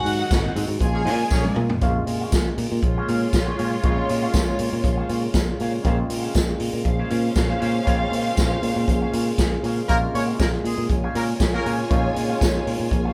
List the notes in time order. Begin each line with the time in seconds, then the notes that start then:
Already playing: C3 D#3 F#3 G#3 C4 F#4 F#5
0.05 G#2, muted clean electric guitar stroke, open hi-hat
0.19 C4 F#4 G#4 D#5
0.31 G#1, muted clean electric guitar stroke, kick, snare, closed hi-hat, tambourine
0.43 C4 F#4 G#4 D#5
0.56 G#2 C4 F#4 G#4 D#5, open hi-hat
0.68 G#2, muted clean electric guitar stroke
0.80 A#1 C#3 F3 G#3 A#3 F4 G#4 G#5, kick, closed hi-hat
0.94 A#3 C#4 G#4 C#5, muted clean electric guitar stroke
1.05 A#2 F4 G#4 C#5 F5, open hi-hat
1.20 muted clean electric guitar stroke
1.30 A#1 A#3 C#4 G#4 C#5, muted clean electric guitar stroke, kick, snare, tambourine
1.44 muted clean electric guitar stroke, high tom
1.56 A#2, mid tom
1.70 muted clean electric guitar stroke, floor tom
1.81 A#1 A#2 C3 G#3 A#3 C#4 F4 G#4 C5 F5, kick, closed hi-hat
1.87 C#3
1.95 muted clean electric guitar stroke
2.07 A#2, muted clean electric guitar stroke, open hi-hat
2.21 C#4 G#4 C5 F5
2.32 A#1, muted clean electric guitar stroke, kick, snare, closed hi-hat, tambourine
2.47 muted clean electric guitar stroke
2.58 A#2, open hi-hat
2.72 A#2, muted clean electric guitar stroke
2.82 A#1 G#3 F4 C#5, muted clean electric guitar stroke, kick, closed hi-hat
2.97 C#4 G#4 C5 F5
3.08 A#2 C#4 G#4 C5 F5, open hi-hat
3.22 muted clean electric guitar stroke
3.33 A#1, muted clean electric guitar stroke, kick, snare, closed hi-hat, tambourine
3.46 C#4 G#4 C5 F5
3.58 A#2 C#4 G#4 C5 F5, open hi-hat
3.72 muted clean electric guitar stroke
3.83 A#1 C3 G#3 A#3 C#4 F4 G#4 C5 F5, kick, closed hi-hat
3.89 C#3
3.97 muted clean electric guitar stroke
4.09 A#2, muted clean electric guitar stroke, open hi-hat
4.22 C#4 G#4 C5 F5
4.33 A#1, muted clean electric guitar stroke, kick, snare, closed hi-hat, tambourine
4.48 muted clean electric guitar stroke
4.59 A#2, open hi-hat
4.73 A#2, muted clean electric guitar stroke
4.84 A#1, muted clean electric guitar stroke, kick, closed hi-hat
4.97 C#4 G#4 C5 F5
5.09 A#2 C#4 G#4 C5 F5, open hi-hat
5.23 muted clean electric guitar stroke
5.34 A#1, kick, snare, closed hi-hat, tambourine
5.48 muted clean electric guitar stroke
5.60 A#2 C#4 G#4 C5 F5, open hi-hat
5.74 muted clean electric guitar stroke
5.83 A#1 C#3 G#3 A#3 C4 C#4 F4 G#4 C5, kick, closed hi-hat
5.87 F5
5.99 muted clean electric guitar stroke
6.10 A#2, muted clean electric guitar stroke, open hi-hat
6.22 C#4 G#4 C5 F5
6.34 A#1, kick, snare, closed hi-hat, tambourine
6.49 muted clean electric guitar stroke
6.60 A#2, open hi-hat
6.73 A#2, muted clean electric guitar stroke
6.85 A#1 C#4 C5 F5, muted clean electric guitar stroke, kick, closed hi-hat
6.99 C#4 G#4 C5 F5
7.10 A#2 C#4 G#4 C5 F5, open hi-hat
7.24 muted clean electric guitar stroke
7.35 A#1, muted clean electric guitar stroke, kick, snare, closed hi-hat, tambourine
7.49 C#4 G#4 C5 F5
7.60 A#2 C#4 G#4 C5 F5, open hi-hat
7.74 muted clean electric guitar stroke
7.85 A#1 C#3 G#3 A#3 C4 C#4 F4 G#4 C5 F5, kick, closed hi-hat
8.00 muted clean electric guitar stroke
8.12 A#2, muted clean electric guitar stroke, open hi-hat
8.25 C#4 G#4 C5 F5
8.36 A#1, muted clean electric guitar stroke, kick, snare, closed hi-hat, tambourine
8.51 muted clean electric guitar stroke
8.62 A#2, open hi-hat
8.76 A#2
8.88 A#1, muted clean electric guitar stroke, kick, closed hi-hat
9.01 C#4 G#4 C5 F5
9.13 A#2 C#4 G#4 C5 F5, open hi-hat
9.26 muted clean electric guitar stroke
9.38 A#1, kick, snare, closed hi-hat, tambourine
9.52 muted clean electric guitar stroke
9.63 A#2 C#4 G#4 C5 F5, open hi-hat
9.77 muted clean electric guitar stroke
9.87 A#1 C3 G#3 A#3 C#4 F4 G#4 A#4 C5 F5, kick, closed hi-hat
9.94 C#3
10.02 muted clean electric guitar stroke
10.14 A#2 C#4 C#5, muted clean electric guitar stroke, open hi-hat
10.27 C#4 G#4 C5 F5
10.39 A#1 A#3 A#4, muted clean electric guitar stroke, kick, snare, closed hi-hat, tambourine
10.53 muted clean electric guitar stroke
10.64 A#2 G#3 G#4, open hi-hat
10.78 A#2
10.90 A#1 F4 C#5 G#5, muted clean electric guitar stroke, kick, closed hi-hat
11.03 C#4 G#4 C5 F5
11.15 A#2 A#3 C#4 G#4 A#4 C5 F5, open hi-hat
11.29 muted clean electric guitar stroke
11.40 A#1, muted clean electric guitar stroke, kick, snare, closed hi-hat, tambourine
11.54 A#3 C#4 G#4 A#4 C5 F5
11.66 A#2 C#4 G#4 C5 F5, open hi-hat
11.79 muted clean electric guitar stroke
11.89 A#1 C3 C#3 G#3 A#3 C#4 D#4 G#4 C5 F5, kick, closed hi-hat
11.98 F4
12.03 muted clean electric guitar stroke
12.15 A#2, muted clean electric guitar stroke, open hi-hat
12.29 C#4 G#4 C5 F5
12.41 A#1, muted clean electric guitar stroke, kick, snare, closed hi-hat, tambourine
12.54 muted clean electric guitar stroke
12.67 A#2, open hi-hat
12.80 A#2
12.91 A#1, muted clean electric guitar stroke, kick, closed hi-hat
13.05 C#4 G#4 C5 F5